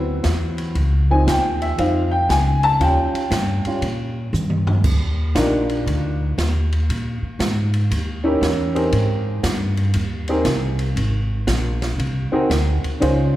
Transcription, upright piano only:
Already playing: F#3 B3 C4 E4
1.10 F3 C4 D#4 G#5
1.30 G5
1.62 E5
1.78 F3 C4 D#4 F5
2.11 G5
2.30 G#5
2.64 A5
2.80 G3 C#4 F4 G5
3.66 G3 C#4 F4
5.35 D4 D#4 F4 G4 A#4
8.24 C#4 D#4 E4 G4 A#4
8.75 C4 D#4 G4 G#4 A#4
10.29 C4 D#4 G4 G#4 A#4
12.32 C4 D#4 F#4 G#4 A#4
13.00 C#4 D#4 F4 G#4 C5

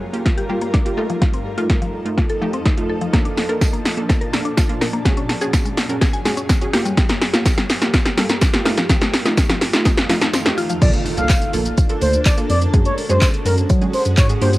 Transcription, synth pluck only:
0.13 A#3 F4 G4
0.49 A#3 F4 G4
0.85 A#3 F4 G4
0.97 A3 D#4 F4
1.57 A3 D#4 F4
2.05 A3 D#4 F4
2.41 A3 D#4 G4
2.77 A3 D#4 F4
3.13 A#3 D4 A4
3.49 A#3 D4 A#4
3.97 A#3 D4 A4
4.33 A#3 D4 A4
4.69 A#3 D4 F4
5.05 C#4 F#4 G#4
5.41 C#4 F#4 G#4
5.89 C#4 F#4 A#4
6.25 C#4 F#4 G#4
6.62 C#4 F#4 G#4
6.73 A#3 F4 G4
7.33 A#3 F4 G4
7.81 A#3 F4 G4
8.17 A#3 F4 A4
8.53 A#3 F4 G4
8.65 A3 D#4 F4
9.25 A3 D#4 F4
9.73 A3 D#4 F4
10.09 A3 D#4 F4
10.45 A3 D#4 G4
10.81 A#3 D4 F4 A4
11.17 A#3 D4 F4 A4
11.53 A#3 D4 F4 A4
11.89 A#3 D4 F4 A4
12.38 A#3 D4 F4 A4
12.74 G#3 C#4 F#4 G#4
13.09 G#3 C#4 F#4 G#4
13.46 G#3 C#4 F#4 A#4
13.81 G#3 C#4 F#4 G#4
14.29 G#3 C#4 F#4 G#4
14.41 A#3 D4 F4 G4

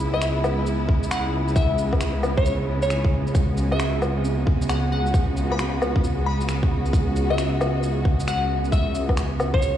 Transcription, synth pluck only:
0.14 E5
1.11 F#5
1.56 E5
2.38 C#5
2.83 C#5
3.72 E5
4.69 F#5
4.92 F#5
5.52 B5
6.26 B5
7.30 E5
8.28 F#5
8.72 E5
9.54 C#5

